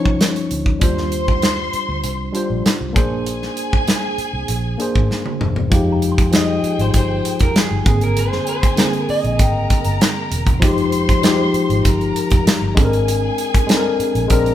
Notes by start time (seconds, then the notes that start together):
Already playing: F3 C#4 D#4 C#5 C#6
0.05 C2, kick
0.21 snare, closed hi-hat
0.36 closed hi-hat
0.51 D2, closed hi-hat
0.66 kick
0.80 D#2 G3 D4 F4 C5 C6, kick, closed hi-hat
0.84 C5
0.98 snare
1.12 closed hi-hat
1.28 kick
1.42 snare, closed hi-hat
1.73 muted fingered electric bass stroke, closed hi-hat
1.89 D2
2.04 C2, closed hi-hat
2.32 G3 D4 F4, closed hi-hat
2.36 C5
2.50 A#1
2.66 snare, closed hi-hat
2.81 C2
2.93 A#1 A#3 D4 G#4 G#5, kick, closed hi-hat
2.97 C5
3.26 closed hi-hat
3.42 snare
3.57 closed hi-hat
3.73 kick
3.88 snare, closed hi-hat
4.18 muted fingered electric bass stroke, closed hi-hat
4.33 C2
4.48 A#1, closed hi-hat
4.78 A#3 D4 G#4 C5, closed hi-hat
4.95 G#1, kick
5.11 snare
5.26 high tom
5.41 E1, mid tom
5.56 floor tom
5.70 F1 F3 G#3 D#4 G4 G#4 F5 G5, kick, closed hi-hat
5.92 A#5
6.02 closed hi-hat
6.12 C6
6.18 kick, closed hi-hat
6.31 F3 G#3 D#4, snare, closed hi-hat
6.35 F4 D#5
6.63 muted fingered electric bass stroke, closed hi-hat
6.78 G#1 C5, closed hi-hat
6.94 C5, kick, closed hi-hat
7.25 closed hi-hat
7.39 F1 A#4, kick, closed hi-hat
7.55 G#4, muted fingered electric bass stroke, snare, closed hi-hat
7.71 G1
7.85 G#1 D3 A#3 C4 G#4 G#5, kick, closed hi-hat
8.01 A#4, closed hi-hat
8.17 C5, closed hi-hat
8.32 snare
8.47 C5, closed hi-hat
8.63 kick, closed hi-hat
8.76 D3 A#3 C4 A#5, snare, closed hi-hat
8.80 G#4
8.93 A#4, closed hi-hat
9.09 D#5, muted fingered electric bass stroke, open hi-hat
9.24 A#1, closed hi-hat
9.39 G#1 A#4 G5 A#5, kick, closed hi-hat
9.70 kick, closed hi-hat
9.85 G1, closed hi-hat
10.01 snare, closed hi-hat
10.31 E1, closed hi-hat
10.47 kick, closed hi-hat
10.60 F1 F3 G#3 D#4 G4 C5 C6, kick, closed hi-hat
10.78 closed hi-hat
10.92 closed hi-hat
11.09 kick, closed hi-hat
11.22 F3 G#3 D#4 G4, snare, closed hi-hat
11.54 muted fingered electric bass stroke, closed hi-hat
11.69 G#1, closed hi-hat
11.85 G1 A#4 A#5, kick, closed hi-hat
12.01 closed hi-hat
12.16 closed hi-hat
12.30 F1, kick, closed hi-hat
12.46 muted fingered electric bass stroke, snare, closed hi-hat
12.62 G1
12.74 G#1 G#3 C4 D4 G#4 A4 G#5, kick, closed hi-hat
12.85 A#4
12.93 closed hi-hat
13.08 closed hi-hat
13.38 closed hi-hat
13.54 kick, closed hi-hat
13.67 G#3 C4 D4 A4, snare, closed hi-hat
13.77 A#4
13.99 muted fingered electric bass stroke, closed hi-hat
14.15 A#1, closed hi-hat
14.28 A#1 G#3 C4 D4 A#4 A#5, kick, closed hi-hat
14.32 A#4
14.46 closed hi-hat